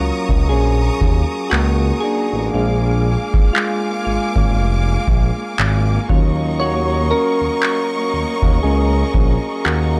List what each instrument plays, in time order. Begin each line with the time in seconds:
Already playing: string section A#3 A#5 C#6 D#6, synth keys F#4 A#4 C#5
0.00 analog synth bass C#2, synth keys F#3 C#4 F4
0.29 analog synth bass C#2, kick
0.49 analog synth bass A#1, synth keys C#4 G#4
1.01 analog synth bass D#2, kick
1.50 analog synth bass C#2, synth keys A#3 F#4, clap
2.00 synth keys D4 G#4
2.33 analog synth bass A1
2.53 analog synth bass A#1, synth keys G#3 D4 F4, string section F5 G#5 D6
3.34 analog synth bass G#1, kick
3.53 synth keys G#3 F4, clap
4.05 analog synth bass G#1, synth keys G#3 F4
4.36 analog synth bass G#1, kick
4.58 analog synth bass F1
5.08 analog synth bass A#1, kick
5.59 analog synth bass G#1, clap
6.09 analog synth bass D#2, synth keys F#3 C#4 F4, string section D#5 A#5 C#6, kick
6.60 synth keys F#4 C#5
7.11 synth keys C#4 A#4
7.41 analog synth bass D#2
7.63 clap
8.14 analog synth bass D#2
8.42 analog synth bass D#2, kick
8.63 analog synth bass C#2, synth keys C#4 G#4
9.14 analog synth bass A#1, kick
9.65 analog synth bass D#2, synth keys A#3 F#4, clap